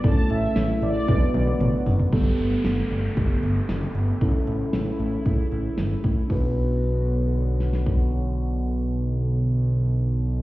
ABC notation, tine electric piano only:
X:1
M:4/4
L:1/8
Q:1/4=115
K:Bm
V:1 name="Tine electric piano"
[A,CEA]4 [B,DFB]4 | [B,GA]8 | [CEA]8 | [DFB]8- |
[DFB]8 |]